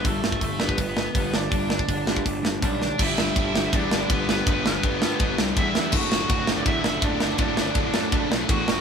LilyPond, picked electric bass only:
\new Staff \with { instrumentName = "Picked electric bass" } { \clef bass \time 4/4 \key g \lydian \tempo 4 = 164 g,,8 g,,8 g,,8 g,,8 g,,4 g,,8 g,,8 | g,,4 g,,8 g,,8 g,,8 g,,8 b,,4 | g,,8 g,,8 g,,8 g,,8 e,8 g,,8 g,,8 g,,8 | g,,8 g,,8 g,,8 g,8 g,,8 c,8 e,8 e,8 |
fis,,8 fis,,8 fis,,8 fis,,8 e,8 fis,,8 fis,,8 fis,,8 | fis,,8 fis,,8 fis,,8 fis,8 fis,,8 b,,8 e,8 fis,,8 | }